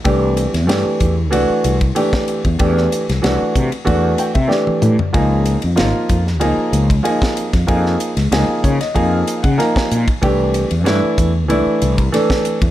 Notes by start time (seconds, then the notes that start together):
0.04 C2 E3 A3 D4 G4, kick, ride
0.37 hi-hat pedal, ride
0.54 E2, snare, ride
0.67 G2 E3 A3 D4 G4, snare, ride
0.85 muted fretless electric bass stroke
1.00 E2, kick, hi-hat pedal, ride
1.31 C2 E3 A3 D4 F#4, ride
1.50 muted fretless electric bass stroke
1.64 C2, hi-hat pedal, ride
1.81 kick, ride
1.95 E3 A3 D4 G4, ride
2.13 kick, snare
2.28 hi-hat pedal, ride
2.45 E2, kick, ride
2.59 E2 E3 A3 D4 G4, kick, ride
2.77 snare
2.92 hi-hat pedal, ride
3.09 C2, snare, ride
3.22 C2 E3 A3 D4 F#4, snare, ride
3.42 muted fretless electric bass stroke
3.56 C3, kick, hi-hat pedal, ride
3.72 ride
3.85 E2 E3 A3 D4 F#4, kick, ride
4.18 G5, hi-hat pedal, ride
4.34 C3 E5, kick, ride
4.47 E3 A3 D4 G4 D5, snare
4.67 muted fretless electric bass stroke, high tom
4.82 A2, hi-hat pedal, mid tom
4.99 floor tom
5.13 C#2 F3 A#3 D#4 G#4, kick, ride
5.46 hi-hat pedal, ride
5.62 F2, ride
5.76 G#1 F3 A#3 D#4 F4, snare, ride
5.95 muted fretless electric bass stroke
6.09 F2, kick, hi-hat pedal, ride
6.27 snare
6.40 C#2 F3 A#3 D#4 G#4, ride
6.72 C#2, hi-hat pedal, ride
6.90 kick, ride
7.03 F3 A#3 D#4 G#4, ride
7.22 kick, snare
7.37 hi-hat pedal, ride
7.53 F2, kick, snare, ride
7.67 F2 F3 A#3 D#4 G#4, kick, ride
7.86 snare
8.00 hi-hat pedal, ride
8.16 C#2, snare, ride
8.31 C#2 F3 A#3 D#4 G#4, snare, ride
8.48 muted fretless electric bass stroke
8.63 C#3 C#5, kick, hi-hat pedal, ride
8.81 D#5, snare, ride
8.94 F2 F3 A#3 D#4 G#4 F5, kick, ride
9.13 F5
9.27 hi-hat pedal, ride
9.43 C#3 F#5, kick, ride
9.58 F3 A#3 D#4 A#4 G#5, snare, ride
9.75 G#5, muted fretless electric bass stroke, kick, snare
9.91 A#2, hi-hat pedal, ride
10.08 kick, ride
10.22 C2 E3 A3 D4 G4, kick, ride
10.54 hi-hat pedal, ride
10.71 E2, ride
10.84 G2 E3 A3 D4 E4, snare, ride
11.03 muted fretless electric bass stroke
11.18 E2, kick, hi-hat pedal, ride
11.48 C2 E3 A3 D4 E4, ride
11.66 muted fretless electric bass stroke
11.82 C2, hi-hat pedal, ride
11.98 kick, ride
12.12 E3 A3 D4 A4, snare, ride
12.30 kick, snare
12.45 hi-hat pedal, ride
12.62 E2, kick, ride